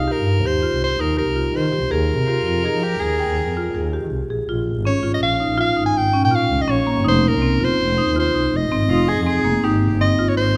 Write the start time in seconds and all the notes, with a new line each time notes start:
Already playing: C2 F5
0.08 G4
0.12 A#4
0.18 G2
0.45 D#2 G4 C5
0.63 F4
0.73 C2
0.84 C5
0.99 D#2 D#4 A#4
1.17 G4 A#4
1.27 C2
1.36 F4
1.54 D#3 C5
1.73 G4
1.82 C2
1.91 D#2 G#4 A#4
2.18 C3
2.27 F4 G4
2.46 F2 F4
2.63 D#4 G#4
2.73 F3
2.83 G4
3.00 D#2 G#4
3.19 G5
3.29 D#2
3.47 F2
3.57 F4
3.75 D#2 G#4
3.93 G4
4.02 D#3
4.11 C2
4.30 A#1 G#4
4.48 A#1 F4
4.76 G#1
4.85 C#4 C#5
5.02 G#1 F4
5.14 D#5
5.21 A#1 F5
5.40 D#4
5.49 A#1
5.58 F4 F5
5.76 G#1 D#4
5.86 G#5
5.95 G#1 G5
6.14 C#4
6.23 A#2 G5
6.31 F4 F5
6.50 C#2
6.62 D#5
6.68 A#1 C#4 C#5
6.87 A#3
6.97 G1
7.05 F1 D#4 C5
7.28 A#4
7.34 C2
7.42 C4
7.61 F1 F4 C5
7.80 F1
7.98 D#4
8.08 D#2
8.16 F4 C5
8.35 C2 D#4
8.54 F1 D#5
8.72 G#1 C4
8.89 F1 D#4 F4
9.08 G#4
9.18 F2
9.26 C4 G#4
9.45 F1 A#3
9.64 G#1 D#4 G4
9.92 G1
10.01 C4 D#5
10.19 G1 F4
10.29 C#5
10.37 G#1 C5